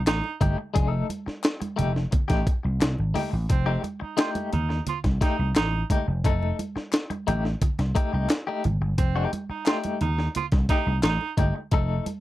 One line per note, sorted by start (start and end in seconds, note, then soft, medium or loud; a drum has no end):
0.07 0.20 A1 medium
0.07 0.35 D#4 loud
0.07 muted clean electric guitar stroke soft
0.07 snare loud
0.07 clap loud
0.07 closed hi-hat loud
0.24 muted conga soft
0.41 0.54 G1 medium
0.41 0.57 A3 medium
0.41 0.57 D#4 medium
0.41 0.57 G4 medium
0.41 kick medium
0.41 closed hi-hat medium
0.41 high conga medium
0.41 low conga medium
0.58 muted clean electric guitar stroke soft
0.74 1.02 F1 loud
0.74 0.88 G#3 medium
0.74 0.87 D4 medium
0.74 0.88 G#4 medium
0.74 kick loud
0.74 closed hi-hat medium
0.74 muted conga soft
0.87 1.06 A3 medium
0.87 1.07 D#4 medium
0.87 1.07 A4 medium
1.10 closed hi-hat medium
1.10 high conga medium
1.26 muted clean electric guitar stroke soft
1.26 muted slap bass stroke soft
1.26 snare soft
1.44 snare loud
1.44 clap medium
1.44 closed hi-hat medium
1.61 muted clean electric guitar stroke medium
1.61 closed hi-hat medium
1.61 muted conga soft
1.61 high conga medium
1.76 2.05 F1 medium
1.76 1.98 A3 medium
1.76 1.93 D#4 medium
1.76 1.92 G4 medium
1.76 closed hi-hat medium
1.76 low conga medium
1.96 snare soft
2.11 muted clean electric guitar stroke soft
2.11 kick loud
2.11 closed hi-hat medium
2.11 muted conga soft
2.11 low conga medium
2.28 2.43 A1 medium
2.28 2.45 A3 medium
2.28 2.46 D#4 medium
2.28 2.46 G4 loud
2.28 kick medium
2.28 snare soft
2.28 closed hi-hat medium
2.28 muted conga soft
2.46 muted clean electric guitar stroke soft
2.46 kick loud
2.46 closed hi-hat medium
2.63 2.77 C2 medium
2.63 muted clean electric guitar stroke soft
2.80 2.95 C2 loud
2.80 muted clean electric guitar stroke soft
2.80 snare loud
2.80 clap loud
2.80 closed hi-hat medium
2.80 muted conga soft
2.98 3.12 G#1 medium
2.98 muted conga soft
3.14 3.31 A3 medium
3.14 3.31 D#4 medium
3.14 3.30 G4 medium
3.14 open hi-hat medium
3.14 high conga medium
3.14 low conga medium
3.31 3.46 A1 medium
3.31 muted clean electric guitar stroke soft
3.49 3.76 F1 loud
3.49 3.78 C4 loud
3.49 muted clean electric guitar stroke soft
3.49 kick loud
3.49 closed hi-hat medium
3.49 muted conga soft
3.66 3.81 A3 medium
3.66 3.82 D#4 medium
3.66 3.83 G4 medium
3.66 muted conga soft
3.83 muted clean electric guitar stroke soft
3.83 closed hi-hat medium
3.83 high conga medium
4.00 4.16 D#4 medium
4.00 muted clean electric guitar stroke soft
4.00 muted slap bass stroke soft
4.17 4.49 A3 medium
4.17 4.50 D#4 medium
4.17 4.29 F4 medium
4.17 4.50 G4 loud
4.17 snare loud
4.17 clap medium
4.17 closed hi-hat medium
4.17 muted conga soft
4.35 closed hi-hat medium
4.35 muted conga soft
4.35 high conga medium
4.52 4.79 D#2 medium
4.52 4.81 D#4 loud
4.52 muted clean electric guitar stroke medium
4.52 closed hi-hat medium
4.52 low conga medium
4.69 muted clean electric guitar stroke soft
4.69 snare soft
4.87 4.99 F4 medium
4.87 closed hi-hat medium
4.87 muted conga soft
4.87 low conga medium
5.04 5.17 C2 loud
5.04 muted clean electric guitar stroke soft
5.04 kick medium
5.04 snare soft
5.04 closed hi-hat medium
5.04 muted conga soft
5.21 5.41 A3 medium
5.21 5.38 D#4 medium
5.21 5.50 D#4 loud
5.21 5.37 G4 loud
5.21 kick loud
5.21 snare soft
5.21 closed hi-hat medium
5.39 5.52 C2 medium
5.39 muted clean electric guitar stroke soft
5.55 5.82 A1 medium
5.55 5.84 D#4 loud
5.55 muted clean electric guitar stroke soft
5.55 snare loud
5.55 clap loud
5.55 closed hi-hat medium
5.55 muted conga soft
5.73 muted conga soft
5.90 6.06 A3 medium
5.90 6.06 D#4 medium
5.90 6.07 G4 medium
5.90 kick medium
5.90 closed hi-hat medium
5.90 high conga medium
5.90 low conga medium
6.08 6.20 F1 medium
6.08 muted clean electric guitar stroke soft
6.24 6.50 F1 medium
6.24 6.56 A3 medium
6.24 6.57 D#4 medium
6.24 6.57 A4 medium
6.24 kick loud
6.24 closed hi-hat medium
6.24 muted conga soft
6.42 muted conga soft
6.59 closed hi-hat medium
6.59 high conga medium
6.76 muted clean electric guitar stroke soft
6.76 muted slap bass stroke soft
6.76 snare soft
6.93 snare loud
6.93 clap medium
6.93 closed hi-hat medium
6.93 muted conga soft
7.10 muted clean electric guitar stroke soft
7.10 closed hi-hat medium
7.10 muted conga soft
7.10 high conga medium
7.27 7.53 A1 medium
7.27 7.47 A3 medium
7.27 7.45 D#4 medium
7.27 7.44 G4 medium
7.27 closed hi-hat medium
7.27 low conga medium
7.45 muted clean electric guitar stroke soft
7.45 snare soft
7.62 muted clean electric guitar stroke soft
7.62 kick medium
7.62 closed hi-hat medium
7.62 muted conga soft
7.62 low conga medium
7.79 7.92 C2 medium
7.79 muted clean electric guitar stroke medium
7.79 snare soft
7.79 closed hi-hat medium
7.79 muted conga soft
7.95 8.11 A3 medium
7.95 8.12 D#4 medium
7.95 8.11 G4 medium
7.95 kick medium
7.95 closed hi-hat medium
8.13 8.26 C2 medium
8.13 8.29 A3 soft
8.13 8.29 D#4 medium
8.13 8.29 G4 medium
8.30 muted clean electric guitar stroke soft
8.30 snare loud
8.30 clap medium
8.30 closed hi-hat medium
8.30 muted conga soft
8.47 8.63 A3 medium
8.47 8.64 D#4 medium
8.47 8.64 G4 medium
8.64 8.78 G#1 medium
8.64 muted clean electric guitar stroke soft
8.64 closed hi-hat medium
8.64 high conga medium
8.64 low conga medium
8.81 8.94 G1 medium
8.81 muted clean electric guitar stroke medium
8.98 9.24 F1 loud
8.98 9.26 C4 loud
8.98 muted clean electric guitar stroke soft
8.98 kick loud
8.98 closed hi-hat medium
8.98 muted conga soft
9.16 9.31 A3 medium
9.16 9.32 D#4 medium
9.16 9.32 G4 medium
9.33 closed hi-hat medium
9.33 high conga medium
9.49 9.64 D#4 medium
9.49 muted slap bass stroke soft
9.49 muted clean electric guitar stroke soft
9.66 9.98 A3 medium
9.66 9.99 D#4 medium
9.66 9.78 F4 medium
9.66 9.99 G4 medium
9.66 snare loud
9.66 clap loud
9.66 closed hi-hat medium
9.66 muted conga soft
9.84 closed hi-hat medium
9.84 muted conga soft
9.84 high conga medium
10.01 10.27 D#2 loud
10.01 10.28 D#4 loud
10.01 muted clean electric guitar stroke soft
10.01 closed hi-hat medium
10.01 low conga medium
10.18 muted clean electric guitar stroke medium
10.18 snare soft
10.35 10.47 F4 medium
10.35 closed hi-hat medium
10.35 muted conga soft
10.35 low conga medium
10.52 10.65 C2 loud
10.52 muted clean electric guitar stroke medium
10.52 kick medium
10.52 snare soft
10.52 closed hi-hat soft
10.69 10.90 A3 medium
10.69 10.97 D#4 loud
10.69 10.87 D#4 medium
10.69 10.86 G4 medium
10.69 kick loud
10.69 snare soft
10.69 closed hi-hat medium
10.87 11.00 C2 medium
10.87 muted clean electric guitar stroke soft
11.03 11.17 A1 loud
11.03 11.31 D#4 loud
11.03 muted clean electric guitar stroke soft
11.03 snare loud
11.03 clap medium
11.03 closed hi-hat medium
11.21 muted conga soft
11.37 11.51 G1 medium
11.37 11.53 A3 medium
11.37 11.54 D#4 medium
11.37 11.54 G4 medium
11.37 kick medium
11.37 closed hi-hat medium
11.37 high conga medium
11.37 low conga medium
11.55 muted clean electric guitar stroke soft
11.71 11.98 F1 loud
11.71 12.03 A3 medium
11.71 12.04 D#4 medium
11.71 12.04 A4 loud
11.71 kick loud
11.71 closed hi-hat medium
11.71 muted conga soft
12.06 closed hi-hat medium
12.06 high conga medium